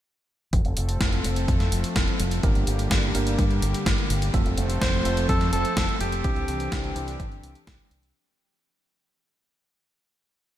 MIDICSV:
0, 0, Header, 1, 6, 480
1, 0, Start_track
1, 0, Key_signature, -1, "major"
1, 0, Tempo, 476190
1, 534, Time_signature, 4, 2, 24, 8
1, 10664, End_track
2, 0, Start_track
2, 0, Title_t, "Alto saxophone"
2, 0, Program_c, 0, 65
2, 4854, Note_on_c, 0, 72, 109
2, 5300, Note_off_c, 0, 72, 0
2, 5332, Note_on_c, 0, 69, 100
2, 5556, Note_off_c, 0, 69, 0
2, 5572, Note_on_c, 0, 69, 104
2, 6019, Note_off_c, 0, 69, 0
2, 6056, Note_on_c, 0, 67, 97
2, 7455, Note_off_c, 0, 67, 0
2, 10664, End_track
3, 0, Start_track
3, 0, Title_t, "Tine electric piano"
3, 0, Program_c, 1, 4
3, 2454, Note_on_c, 1, 58, 86
3, 2454, Note_on_c, 1, 62, 83
3, 2454, Note_on_c, 1, 67, 80
3, 2454, Note_on_c, 1, 70, 98
3, 3145, Note_off_c, 1, 58, 0
3, 3145, Note_off_c, 1, 62, 0
3, 3145, Note_off_c, 1, 67, 0
3, 3146, Note_off_c, 1, 70, 0
3, 3174, Note_on_c, 1, 58, 88
3, 3174, Note_on_c, 1, 62, 80
3, 3175, Note_on_c, 1, 67, 79
3, 3175, Note_on_c, 1, 70, 97
3, 3462, Note_off_c, 1, 58, 0
3, 3462, Note_off_c, 1, 62, 0
3, 3462, Note_off_c, 1, 67, 0
3, 3462, Note_off_c, 1, 70, 0
3, 4373, Note_on_c, 1, 57, 89
3, 4373, Note_on_c, 1, 60, 82
3, 4373, Note_on_c, 1, 65, 82
3, 4374, Note_on_c, 1, 69, 100
3, 5065, Note_off_c, 1, 57, 0
3, 5065, Note_off_c, 1, 60, 0
3, 5065, Note_off_c, 1, 65, 0
3, 5065, Note_off_c, 1, 69, 0
3, 5093, Note_on_c, 1, 57, 88
3, 5093, Note_on_c, 1, 65, 82
3, 5094, Note_on_c, 1, 60, 81
3, 5094, Note_on_c, 1, 69, 97
3, 5381, Note_off_c, 1, 57, 0
3, 5382, Note_off_c, 1, 60, 0
3, 5382, Note_off_c, 1, 65, 0
3, 5382, Note_off_c, 1, 69, 0
3, 6294, Note_on_c, 1, 60, 90
3, 6294, Note_on_c, 1, 62, 83
3, 6294, Note_on_c, 1, 64, 81
3, 6294, Note_on_c, 1, 67, 103
3, 6985, Note_off_c, 1, 60, 0
3, 6985, Note_off_c, 1, 62, 0
3, 6985, Note_off_c, 1, 64, 0
3, 6985, Note_off_c, 1, 67, 0
3, 7014, Note_on_c, 1, 60, 91
3, 7014, Note_on_c, 1, 62, 81
3, 7014, Note_on_c, 1, 64, 82
3, 7014, Note_on_c, 1, 67, 100
3, 7302, Note_off_c, 1, 60, 0
3, 7302, Note_off_c, 1, 62, 0
3, 7302, Note_off_c, 1, 64, 0
3, 7302, Note_off_c, 1, 67, 0
3, 10664, End_track
4, 0, Start_track
4, 0, Title_t, "Analog synth pad"
4, 0, Program_c, 2, 89
4, 535, Note_on_c, 2, 53, 75
4, 535, Note_on_c, 2, 60, 72
4, 535, Note_on_c, 2, 69, 84
4, 536, Note_on_c, 2, 57, 70
4, 2435, Note_off_c, 2, 53, 0
4, 2435, Note_off_c, 2, 60, 0
4, 2435, Note_off_c, 2, 69, 0
4, 2436, Note_off_c, 2, 57, 0
4, 2453, Note_on_c, 2, 50, 78
4, 2454, Note_on_c, 2, 58, 72
4, 2454, Note_on_c, 2, 67, 85
4, 2455, Note_on_c, 2, 55, 73
4, 4354, Note_off_c, 2, 50, 0
4, 4355, Note_off_c, 2, 55, 0
4, 4355, Note_off_c, 2, 58, 0
4, 4355, Note_off_c, 2, 67, 0
4, 4374, Note_on_c, 2, 69, 87
4, 4375, Note_on_c, 2, 53, 79
4, 4375, Note_on_c, 2, 57, 71
4, 4375, Note_on_c, 2, 60, 71
4, 6275, Note_off_c, 2, 57, 0
4, 6275, Note_off_c, 2, 60, 0
4, 6275, Note_off_c, 2, 69, 0
4, 6276, Note_off_c, 2, 53, 0
4, 6293, Note_on_c, 2, 60, 72
4, 6294, Note_on_c, 2, 62, 73
4, 6294, Note_on_c, 2, 67, 87
4, 6295, Note_on_c, 2, 52, 80
4, 8194, Note_off_c, 2, 60, 0
4, 8195, Note_off_c, 2, 52, 0
4, 8195, Note_off_c, 2, 62, 0
4, 8195, Note_off_c, 2, 67, 0
4, 10664, End_track
5, 0, Start_track
5, 0, Title_t, "Fingered electric bass"
5, 0, Program_c, 3, 33
5, 533, Note_on_c, 3, 29, 95
5, 636, Note_off_c, 3, 29, 0
5, 657, Note_on_c, 3, 29, 79
5, 757, Note_off_c, 3, 29, 0
5, 777, Note_on_c, 3, 29, 90
5, 979, Note_off_c, 3, 29, 0
5, 1014, Note_on_c, 3, 29, 93
5, 1218, Note_off_c, 3, 29, 0
5, 1256, Note_on_c, 3, 29, 87
5, 1459, Note_off_c, 3, 29, 0
5, 1494, Note_on_c, 3, 41, 86
5, 1698, Note_off_c, 3, 41, 0
5, 1735, Note_on_c, 3, 29, 86
5, 1836, Note_off_c, 3, 29, 0
5, 1974, Note_on_c, 3, 29, 87
5, 2076, Note_off_c, 3, 29, 0
5, 2214, Note_on_c, 3, 29, 96
5, 2418, Note_off_c, 3, 29, 0
5, 2454, Note_on_c, 3, 31, 96
5, 2556, Note_off_c, 3, 31, 0
5, 2575, Note_on_c, 3, 31, 83
5, 2676, Note_off_c, 3, 31, 0
5, 2696, Note_on_c, 3, 31, 89
5, 2899, Note_off_c, 3, 31, 0
5, 2933, Note_on_c, 3, 31, 92
5, 3138, Note_off_c, 3, 31, 0
5, 3175, Note_on_c, 3, 31, 87
5, 3379, Note_off_c, 3, 31, 0
5, 3413, Note_on_c, 3, 43, 90
5, 3618, Note_off_c, 3, 43, 0
5, 3654, Note_on_c, 3, 31, 88
5, 3756, Note_off_c, 3, 31, 0
5, 3892, Note_on_c, 3, 31, 88
5, 3995, Note_off_c, 3, 31, 0
5, 4133, Note_on_c, 3, 31, 97
5, 4338, Note_off_c, 3, 31, 0
5, 4372, Note_on_c, 3, 29, 96
5, 4475, Note_off_c, 3, 29, 0
5, 4493, Note_on_c, 3, 29, 81
5, 4596, Note_off_c, 3, 29, 0
5, 4612, Note_on_c, 3, 29, 91
5, 4817, Note_off_c, 3, 29, 0
5, 4852, Note_on_c, 3, 29, 91
5, 5057, Note_off_c, 3, 29, 0
5, 5092, Note_on_c, 3, 29, 88
5, 5297, Note_off_c, 3, 29, 0
5, 5333, Note_on_c, 3, 41, 92
5, 5537, Note_off_c, 3, 41, 0
5, 5573, Note_on_c, 3, 29, 87
5, 5676, Note_off_c, 3, 29, 0
5, 5813, Note_on_c, 3, 29, 85
5, 5916, Note_off_c, 3, 29, 0
5, 6054, Note_on_c, 3, 29, 99
5, 6258, Note_off_c, 3, 29, 0
5, 6295, Note_on_c, 3, 36, 96
5, 6396, Note_off_c, 3, 36, 0
5, 6414, Note_on_c, 3, 36, 85
5, 6516, Note_off_c, 3, 36, 0
5, 6533, Note_on_c, 3, 36, 91
5, 6737, Note_off_c, 3, 36, 0
5, 7012, Note_on_c, 3, 36, 90
5, 7217, Note_off_c, 3, 36, 0
5, 7254, Note_on_c, 3, 31, 92
5, 7458, Note_off_c, 3, 31, 0
5, 7492, Note_on_c, 3, 36, 88
5, 7595, Note_off_c, 3, 36, 0
5, 7734, Note_on_c, 3, 36, 88
5, 7836, Note_off_c, 3, 36, 0
5, 7972, Note_on_c, 3, 36, 102
5, 8177, Note_off_c, 3, 36, 0
5, 10664, End_track
6, 0, Start_track
6, 0, Title_t, "Drums"
6, 533, Note_on_c, 9, 42, 52
6, 534, Note_on_c, 9, 36, 117
6, 634, Note_off_c, 9, 42, 0
6, 635, Note_off_c, 9, 36, 0
6, 654, Note_on_c, 9, 42, 26
6, 754, Note_off_c, 9, 42, 0
6, 773, Note_on_c, 9, 42, 90
6, 874, Note_off_c, 9, 42, 0
6, 894, Note_on_c, 9, 42, 52
6, 994, Note_off_c, 9, 42, 0
6, 1014, Note_on_c, 9, 36, 113
6, 1014, Note_on_c, 9, 38, 108
6, 1014, Note_on_c, 9, 42, 52
6, 1115, Note_off_c, 9, 36, 0
6, 1115, Note_off_c, 9, 38, 0
6, 1115, Note_off_c, 9, 42, 0
6, 1135, Note_on_c, 9, 42, 25
6, 1236, Note_off_c, 9, 42, 0
6, 1254, Note_on_c, 9, 42, 90
6, 1355, Note_off_c, 9, 42, 0
6, 1374, Note_on_c, 9, 42, 51
6, 1475, Note_off_c, 9, 42, 0
6, 1494, Note_on_c, 9, 36, 114
6, 1495, Note_on_c, 9, 42, 51
6, 1595, Note_off_c, 9, 36, 0
6, 1596, Note_off_c, 9, 42, 0
6, 1615, Note_on_c, 9, 38, 35
6, 1615, Note_on_c, 9, 42, 26
6, 1715, Note_off_c, 9, 38, 0
6, 1715, Note_off_c, 9, 42, 0
6, 1735, Note_on_c, 9, 42, 91
6, 1835, Note_off_c, 9, 42, 0
6, 1854, Note_on_c, 9, 42, 52
6, 1955, Note_off_c, 9, 42, 0
6, 1974, Note_on_c, 9, 36, 112
6, 1974, Note_on_c, 9, 38, 111
6, 1974, Note_on_c, 9, 42, 51
6, 2074, Note_off_c, 9, 38, 0
6, 2074, Note_off_c, 9, 42, 0
6, 2075, Note_off_c, 9, 36, 0
6, 2094, Note_on_c, 9, 42, 25
6, 2195, Note_off_c, 9, 42, 0
6, 2213, Note_on_c, 9, 42, 91
6, 2314, Note_off_c, 9, 42, 0
6, 2332, Note_on_c, 9, 42, 52
6, 2433, Note_off_c, 9, 42, 0
6, 2453, Note_on_c, 9, 42, 52
6, 2454, Note_on_c, 9, 36, 124
6, 2554, Note_off_c, 9, 36, 0
6, 2554, Note_off_c, 9, 42, 0
6, 2574, Note_on_c, 9, 42, 25
6, 2674, Note_off_c, 9, 42, 0
6, 2693, Note_on_c, 9, 42, 91
6, 2794, Note_off_c, 9, 42, 0
6, 2813, Note_on_c, 9, 42, 50
6, 2914, Note_off_c, 9, 42, 0
6, 2932, Note_on_c, 9, 38, 116
6, 2932, Note_on_c, 9, 42, 51
6, 2934, Note_on_c, 9, 36, 119
6, 3033, Note_off_c, 9, 38, 0
6, 3033, Note_off_c, 9, 42, 0
6, 3034, Note_off_c, 9, 36, 0
6, 3053, Note_on_c, 9, 42, 25
6, 3154, Note_off_c, 9, 42, 0
6, 3173, Note_on_c, 9, 42, 91
6, 3273, Note_off_c, 9, 42, 0
6, 3293, Note_on_c, 9, 42, 50
6, 3394, Note_off_c, 9, 42, 0
6, 3413, Note_on_c, 9, 36, 117
6, 3413, Note_on_c, 9, 42, 51
6, 3514, Note_off_c, 9, 36, 0
6, 3514, Note_off_c, 9, 42, 0
6, 3534, Note_on_c, 9, 42, 26
6, 3635, Note_off_c, 9, 42, 0
6, 3653, Note_on_c, 9, 42, 89
6, 3754, Note_off_c, 9, 42, 0
6, 3774, Note_on_c, 9, 42, 51
6, 3875, Note_off_c, 9, 42, 0
6, 3893, Note_on_c, 9, 36, 118
6, 3894, Note_on_c, 9, 38, 116
6, 3894, Note_on_c, 9, 42, 49
6, 3994, Note_off_c, 9, 36, 0
6, 3995, Note_off_c, 9, 38, 0
6, 3995, Note_off_c, 9, 42, 0
6, 4014, Note_on_c, 9, 42, 24
6, 4115, Note_off_c, 9, 42, 0
6, 4135, Note_on_c, 9, 42, 87
6, 4235, Note_off_c, 9, 42, 0
6, 4255, Note_on_c, 9, 42, 53
6, 4355, Note_off_c, 9, 42, 0
6, 4373, Note_on_c, 9, 36, 125
6, 4373, Note_on_c, 9, 42, 50
6, 4473, Note_off_c, 9, 36, 0
6, 4474, Note_off_c, 9, 42, 0
6, 4493, Note_on_c, 9, 42, 24
6, 4593, Note_off_c, 9, 42, 0
6, 4612, Note_on_c, 9, 42, 86
6, 4713, Note_off_c, 9, 42, 0
6, 4733, Note_on_c, 9, 42, 50
6, 4834, Note_off_c, 9, 42, 0
6, 4853, Note_on_c, 9, 36, 115
6, 4854, Note_on_c, 9, 38, 122
6, 4854, Note_on_c, 9, 42, 49
6, 4954, Note_off_c, 9, 36, 0
6, 4955, Note_off_c, 9, 38, 0
6, 4955, Note_off_c, 9, 42, 0
6, 4974, Note_on_c, 9, 42, 24
6, 5074, Note_off_c, 9, 42, 0
6, 5093, Note_on_c, 9, 42, 84
6, 5194, Note_off_c, 9, 42, 0
6, 5213, Note_on_c, 9, 42, 48
6, 5314, Note_off_c, 9, 42, 0
6, 5333, Note_on_c, 9, 36, 123
6, 5333, Note_on_c, 9, 42, 50
6, 5434, Note_off_c, 9, 36, 0
6, 5434, Note_off_c, 9, 42, 0
6, 5452, Note_on_c, 9, 38, 37
6, 5452, Note_on_c, 9, 42, 25
6, 5553, Note_off_c, 9, 38, 0
6, 5553, Note_off_c, 9, 42, 0
6, 5572, Note_on_c, 9, 42, 85
6, 5673, Note_off_c, 9, 42, 0
6, 5693, Note_on_c, 9, 42, 49
6, 5794, Note_off_c, 9, 42, 0
6, 5814, Note_on_c, 9, 36, 121
6, 5814, Note_on_c, 9, 38, 121
6, 5814, Note_on_c, 9, 42, 48
6, 5915, Note_off_c, 9, 36, 0
6, 5915, Note_off_c, 9, 38, 0
6, 5915, Note_off_c, 9, 42, 0
6, 5934, Note_on_c, 9, 42, 24
6, 6035, Note_off_c, 9, 42, 0
6, 6053, Note_on_c, 9, 42, 84
6, 6154, Note_off_c, 9, 42, 0
6, 6173, Note_on_c, 9, 42, 52
6, 6273, Note_off_c, 9, 42, 0
6, 6293, Note_on_c, 9, 42, 49
6, 6294, Note_on_c, 9, 36, 124
6, 6394, Note_off_c, 9, 42, 0
6, 6395, Note_off_c, 9, 36, 0
6, 6413, Note_on_c, 9, 42, 24
6, 6514, Note_off_c, 9, 42, 0
6, 6533, Note_on_c, 9, 42, 86
6, 6634, Note_off_c, 9, 42, 0
6, 6653, Note_on_c, 9, 42, 48
6, 6753, Note_off_c, 9, 42, 0
6, 6774, Note_on_c, 9, 38, 116
6, 6774, Note_on_c, 9, 42, 48
6, 6775, Note_on_c, 9, 36, 117
6, 6875, Note_off_c, 9, 36, 0
6, 6875, Note_off_c, 9, 38, 0
6, 6875, Note_off_c, 9, 42, 0
6, 6894, Note_on_c, 9, 42, 25
6, 6995, Note_off_c, 9, 42, 0
6, 7015, Note_on_c, 9, 42, 83
6, 7116, Note_off_c, 9, 42, 0
6, 7135, Note_on_c, 9, 42, 47
6, 7235, Note_off_c, 9, 42, 0
6, 7254, Note_on_c, 9, 36, 121
6, 7255, Note_on_c, 9, 42, 50
6, 7355, Note_off_c, 9, 36, 0
6, 7356, Note_off_c, 9, 42, 0
6, 7376, Note_on_c, 9, 42, 24
6, 7476, Note_off_c, 9, 42, 0
6, 7494, Note_on_c, 9, 42, 87
6, 7595, Note_off_c, 9, 42, 0
6, 7614, Note_on_c, 9, 42, 49
6, 7715, Note_off_c, 9, 42, 0
6, 7734, Note_on_c, 9, 36, 117
6, 7734, Note_on_c, 9, 38, 115
6, 7734, Note_on_c, 9, 42, 48
6, 7835, Note_off_c, 9, 36, 0
6, 7835, Note_off_c, 9, 38, 0
6, 7835, Note_off_c, 9, 42, 0
6, 7854, Note_on_c, 9, 42, 24
6, 7955, Note_off_c, 9, 42, 0
6, 7975, Note_on_c, 9, 42, 83
6, 8076, Note_off_c, 9, 42, 0
6, 8095, Note_on_c, 9, 42, 49
6, 8195, Note_off_c, 9, 42, 0
6, 10664, End_track
0, 0, End_of_file